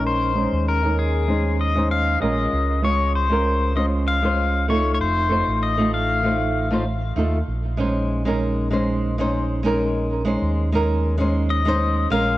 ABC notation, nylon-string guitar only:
X:1
M:4/4
L:1/16
Q:"Swing 16ths" 1/4=97
K:Bbm
V:1 name="Nylon-string guitar"
[A,DEB]2 [A,DEc]3 [A,DEB]3 [A,DEc]3 [A,DEc]3 [A,DFB]2- | [A,DFB]2 [A,DFd]3 [A,DFB]3 [A,DFc]3 [A,DFc]3 [=A,EF=A]2- | [=A,EF=A]2 [A,EFc]3 [A,EFA]3 [A,EFc]3 [A,EFc] z2 [A,EFA] z | z2 [A,DEc]3 [A,DEB]3 [A,DEc]3 [A,DEc]3 [A,DEB]2- |
[A,DEB]2 [A,DEc]3 [A,DEB]3 [A,DEc]3 [A,DEc]3 [A,DFB]2 |]